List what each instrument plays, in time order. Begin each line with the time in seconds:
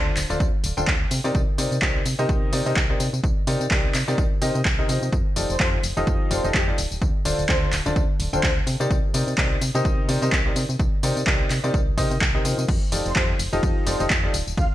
Already playing: fm bass D2, upright piano D3 D4 F4 A4 C5 D5
0.17 fm bass D1, clap, open hi-hat, tambourine
0.30 fm bass D1, upright piano D3 D4 F4 A4 C5 D5, tambourine
0.40 fm bass D2, kick, tambourine
0.64 fm bass D1, open hi-hat, tambourine
0.77 fm bass D1, upright piano D3 D4 F4 A4 C5 G5, tambourine
0.87 fm bass D2, kick, clap, tambourine
1.11 fm bass C3, open hi-hat, tambourine
1.24 upright piano C3 D#4 G4 A#4 C5 D5, fm bass C3, tambourine
1.35 fm bass C2, kick, tambourine
1.58 upright piano C3 D#4 G4 A#4 C5 D5, fm bass C3, open hi-hat, tambourine
1.72 fm bass C3, tambourine
1.82 fm bass C2, upright piano C3 D#4 G4 A#4 C5 D5, kick, clap, tambourine
2.06 fm bass C3, open hi-hat, tambourine
2.19 upright piano C3 D#4 G4 A#4 C5 D#5, fm bass C3, tambourine
2.29 fm bass C2, kick, tambourine
2.53 upright piano C3 D#4 G4 A#4 C5 D5, fm bass C3, open hi-hat, tambourine
2.66 upright piano C3 D#4 G4 A#4 C5 D#5, fm bass C3, tambourine
2.76 fm bass C2, kick, clap, tambourine
2.90 upright piano C3 D#4 G4 A#4 C5 D5
3.00 fm bass C3, open hi-hat, tambourine
3.13 fm bass C3, tambourine
3.24 fm bass C2, kick, tambourine
3.47 fm bass C3, upright piano C3 D#4 G4 A#4 C5 D5, open hi-hat, tambourine
3.61 fm bass C3, tambourine
3.71 fm bass C2, upright piano C3 D#4 G4 A#4 C5 D5, kick, clap, tambourine
3.94 fm bass C3, clap, open hi-hat, tambourine
4.08 upright piano C3 D#4 G4 A#4 C5 D5, fm bass C3, tambourine
4.18 fm bass C2, kick, tambourine
4.42 upright piano C3 D#4 G4 A#4 C5 D#5, fm bass C3, open hi-hat, tambourine
4.55 fm bass C3, tambourine
4.65 fm bass C2, kick, clap, tambourine
4.79 upright piano C3 D#4 G4 A#4 C5 D#5
4.89 fm bass C3, upright piano F3 D#4 G4 A#4 C5 D#5, open hi-hat, tambourine
5.02 fm bass C3, tambourine
5.13 fm bass F2, kick, tambourine
5.36 fm bass F1, upright piano F3 D#4 F4 G4 A4 D5, open hi-hat, tambourine
5.50 fm bass F1, soft synth lead C5, tambourine
5.60 fm bass F2, upright piano F3 D#4 F4 G4 A4 C5, soft synth lead C5, kick, clap, tambourine
5.83 fm bass F1, open hi-hat, tambourine
5.97 fm bass F1, upright piano F3 D#4 F4 G4 A4 D#5, tambourine
6.07 fm bass F2, kick, tambourine
6.31 fm bass F1, upright piano F3 D#4 F4 G4 A4 D5, soft synth lead C5, open hi-hat, tambourine
6.44 fm bass F1, upright piano F3 D#4 F4 G4 A4 D#5, tambourine
6.54 fm bass F2, soft synth lead G4, kick, clap, tambourine
6.68 upright piano D#4 F4 G4 A4 D5
6.78 fm bass D1, open hi-hat, tambourine
6.91 fm bass D1, tambourine
7.02 fm bass D2, kick, tambourine
7.25 fm bass D1, upright piano D3 D4 F4 A4 C5 D5, open hi-hat, tambourine
7.39 fm bass D1, tambourine
7.49 fm bass D2, upright piano D3 D4 F4 A4 C5 D5, soft synth lead C5, kick, clap, tambourine
7.62 soft synth lead C5
7.72 fm bass D1, clap, open hi-hat, tambourine
7.86 fm bass D1, upright piano D3 D4 F4 A4 C5 D5, tambourine
7.96 fm bass D2, kick, tambourine
8.20 fm bass D1, open hi-hat, tambourine
8.33 fm bass D1, upright piano D3 D4 F4 A4 C5 G5, soft synth lead C5, tambourine
8.43 fm bass D2, soft synth lead C5, kick, clap, tambourine
8.67 fm bass C3, open hi-hat, tambourine
8.80 fm bass C3, upright piano C3 D#4 G4 A#4 C5 D5, tambourine
8.91 fm bass C2, kick, tambourine
9.14 fm bass C3, upright piano C3 D#4 G4 A#4 C5 D5, open hi-hat, tambourine
9.27 fm bass C3, tambourine
9.38 fm bass C2, upright piano C3 D#4 G4 A#4 C5 D5, kick, clap, tambourine
9.61 fm bass C3, open hi-hat, tambourine
9.75 fm bass C3, upright piano C3 D#4 G4 A#4 C5 D#5, tambourine
9.85 fm bass C2, kick, tambourine
10.09 fm bass C3, upright piano C3 D#4 G4 A#4 C5 D5, open hi-hat, tambourine
10.22 fm bass C3, upright piano C3 D#4 G4 A#4 C5 D#5, tambourine
10.32 fm bass C2, kick, clap, tambourine
10.46 upright piano C3 D#4 G4 A#4 C5 D5
10.56 fm bass C3, open hi-hat, tambourine
10.69 fm bass C3, tambourine
10.79 fm bass C2, kick, tambourine
11.03 fm bass C3, upright piano C3 D#4 G4 A#4 C5 D5, open hi-hat, tambourine
11.17 fm bass C3, tambourine
11.27 fm bass C2, upright piano C3 D#4 G4 A#4 C5 D5, kick, clap, tambourine
11.50 fm bass C3, clap, open hi-hat, tambourine
11.64 upright piano C3 D#4 G4 A#4 C5 D5, fm bass C3, tambourine
11.74 fm bass C2, kick, tambourine
11.98 fm bass C3, upright piano C3 D#4 G4 A#4 C5 D#5, kick, open hi-hat, tambourine
12.11 fm bass C3, tambourine
12.21 fm bass C2, kick, clap, tambourine
12.35 upright piano C3 D#4 G4 A#4 C5 D#5
12.45 fm bass C3, upright piano F3 D#4 G4 A#4 C5 D#5, open hi-hat, tambourine
12.58 fm bass C3, tambourine
12.68 fm bass F2, kick, crash, ride, tambourine
12.92 fm bass F1, upright piano F3 D#4 F4 G4 A4 D5, open hi-hat, ride, tambourine
13.05 fm bass F1, soft synth lead C5, tambourine
13.16 fm bass F2, upright piano F3 D#4 F4 G4 A4 C5, soft synth lead C5, kick, clap, ride, tambourine
13.39 fm bass F1, open hi-hat, ride, tambourine
13.53 fm bass F1, upright piano F3 D#4 F4 G4 A4 D#5, tambourine
13.63 fm bass F2, kick, ride, tambourine
13.87 fm bass F1, upright piano F3 D#4 F4 G4 A4 D5, soft synth lead C5, open hi-hat, ride, tambourine
14.00 fm bass F1, upright piano F3 D#4 F4 G4 A4 D#5, tambourine
14.10 fm bass F2, kick, clap, ride, tambourine
14.23 upright piano D#4 F4 G4 A4 D5
14.34 fm bass D1, open hi-hat, ride, tambourine
14.47 fm bass D1, tambourine
14.57 fm bass D2, soft synth lead F5, kick, ride, tambourine
14.71 soft synth lead F5